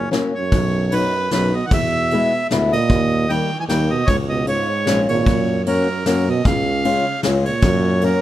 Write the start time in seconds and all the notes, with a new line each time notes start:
Already playing: F#1
0.11 F#3 A#3 C#4, snare, closed hi-hat
0.35 F#2 C#5
0.52 B1, kick, ride
0.92 F#2 F#3 B3 D#4 B4, ride
1.31 B1 F#2 F#3 B3 D#4 B4, snare, ride
1.54 B2 D#5
1.66 D#3 F#5
1.71 E2 B2 E5, kick, ride
2.11 G#3 B3 E4, ride
2.51 D2 G#3 B3 E4, snare, ride
2.71 A#2 D#5, ride
2.90 D#2, kick, ride
3.29 D#3 G3 A#3 D#4 G5, ride
3.60 E3 G#5
3.68 D#2 D#3 G3 A#3 D#4 G5, snare, ride
3.90 B2 D#5
4.06 C#2 G#2 C#5, kick, ride
4.29 B2 D#5
4.46 G#2 G#3 C#4 F4 C#5, ride
4.86 A#1 G#3 C#4 F4, snare, ride
5.09 G#1 A#2 C#5, ride
5.26 F#2, kick, ride
5.66 F#2 A#3 C#4 F#4 A#4, ride
6.05 F#2 A#3 C#4 F#4 A#4, snare, ride
6.27 B2 D#5
6.45 C#2 C#3 F5, kick, ride
6.84 G#3 C#4 F4, ride
7.23 C#2 G#3 C#4 F4, snare, ride
7.45 A#2 C#5, ride
7.62 F#2, kick, ride
8.01 F#2 A#3 C#4 F#4 A#4, ride